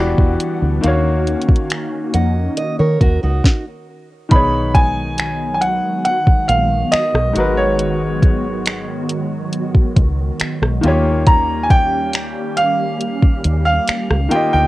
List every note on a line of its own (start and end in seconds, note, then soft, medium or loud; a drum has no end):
0.00 0.13 E1 loud
0.00 0.82 E3 medium
0.00 0.83 E3 medium
0.00 0.82 G3 medium
0.00 0.82 B3 medium
0.00 0.83 B3 medium
0.00 0.82 D4 medium
0.00 0.84 F#4 medium
0.00 0.84 G4 medium
0.00 0.85 D5 medium
0.00 0.82 F#5 medium
0.18 0.35 E1 medium
0.18 kick medium
0.40 closed hi-hat medium
0.62 0.79 D2 medium
0.81 1.34 D#2 loud
0.81 3.39 D#3 medium
0.81 3.42 D#3 medium
0.81 3.40 A#3 medium
0.81 3.42 A#3 medium
0.81 3.42 C#4 medium
0.81 3.42 D#4 medium
0.81 3.42 F#4 medium
0.81 3.41 F5 medium
0.81 closed hi-hat medium
0.86 3.41 F#4 medium
0.86 3.42 C#5 medium
1.27 closed hi-hat soft
1.42 closed hi-hat soft
1.49 kick medium
1.56 closed hi-hat medium
1.70 finger snap medium
1.70 closed hi-hat medium
2.14 2.47 F2 medium
2.14 2.55 D#5 medium
2.14 2.55 F#5 medium
2.14 closed hi-hat medium
2.57 2.78 D#5 medium
2.57 closed hi-hat medium
2.79 2.96 D#3 medium
2.79 3.00 A#4 medium
2.79 3.00 C#5 medium
3.01 3.18 D#2 medium
3.01 3.22 F#4 medium
3.01 3.22 A#4 medium
3.01 kick medium
3.01 closed hi-hat medium
3.23 3.40 C#2 medium
3.23 3.64 D#4 medium
3.23 3.64 F#4 medium
3.44 kick loud
3.44 snare medium
4.29 5.79 B1 loud
4.29 7.30 D#3 medium
4.29 14.67 D#3 medium
4.29 7.32 F#3 medium
4.29 10.79 G#3 medium
4.29 7.31 B3 medium
4.29 10.79 B3 medium
4.29 7.32 D#4 medium
4.29 10.79 F#4 medium
4.29 4.76 B5 loud
4.29 kick loud
4.29 closed hi-hat medium
4.34 7.33 G#4 medium
4.34 7.34 C#5 medium
4.74 5.53 G#5 loud
4.74 kick medium
4.74 closed hi-hat medium
5.18 finger snap loud
5.18 closed hi-hat medium
5.54 5.61 G#5 medium
5.61 6.02 F#5 medium
5.61 closed hi-hat medium
6.05 6.50 F#5 medium
6.05 closed hi-hat medium
6.27 muted fingered electric bass stroke soft
6.27 kick medium
6.48 6.82 A#1 medium
6.48 6.93 F5 medium
6.48 closed hi-hat medium
6.92 7.59 D#5 medium
6.92 finger snap loud
6.92 muted fingered electric bass stroke soft
6.92 closed hi-hat medium
7.14 7.31 B1 loud
7.14 cross-stick medium
7.33 8.86 G#1 medium
7.33 10.78 G#2 medium
7.33 10.80 F#3 medium
7.33 10.79 G#3 medium
7.33 10.80 F#4 medium
7.33 closed hi-hat medium
7.38 10.81 A#4 medium
7.38 10.81 B4 medium
7.57 10.14 C#5 medium
7.79 closed hi-hat medium
8.22 kick medium
8.22 closed hi-hat medium
8.66 finger snap loud
8.66 closed hi-hat medium
9.09 closed hi-hat medium
9.53 closed hi-hat medium
9.75 muted fingered electric bass stroke soft
9.75 kick medium
9.96 10.30 C#2 medium
9.96 kick medium
9.96 closed hi-hat medium
10.40 finger snap loud
10.40 muted fingered electric bass stroke soft
10.40 closed hi-hat medium
10.62 10.78 B1 medium
10.62 cross-stick medium
10.81 12.34 D#2 medium
10.81 14.26 D#3 medium
10.81 14.67 G3 medium
10.81 14.67 A#3 medium
10.81 14.27 A#3 medium
10.81 14.67 C#4 medium
10.81 14.28 F4 medium
10.81 14.67 G4 medium
10.81 closed hi-hat medium
10.86 14.29 G4 medium
10.86 14.29 C#5 medium
11.27 11.64 A#5 loud
11.27 kick loud
11.27 closed hi-hat medium
11.63 11.70 G#5 medium
11.70 12.60 G5 loud
11.70 kick medium
11.70 closed hi-hat medium
12.13 finger snap loud
12.13 closed hi-hat medium
12.57 13.64 F5 medium
12.57 closed hi-hat medium
13.01 closed hi-hat medium
13.22 muted fingered electric bass stroke soft
13.22 kick medium
13.44 13.78 D#2 medium
13.44 closed hi-hat medium
13.65 14.33 F5 medium
13.88 finger snap loud
13.88 muted fingered electric bass stroke soft
13.88 closed hi-hat medium
14.10 14.27 C#2 medium
14.10 cross-stick medium
14.29 14.67 D#3 medium
14.29 14.67 A#3 medium
14.29 14.67 F4 medium
14.29 14.52 G5 medium
14.29 closed hi-hat medium
14.34 14.67 G4 medium
14.34 14.67 D#5 medium
14.53 14.67 D2 medium
14.53 14.67 G5 medium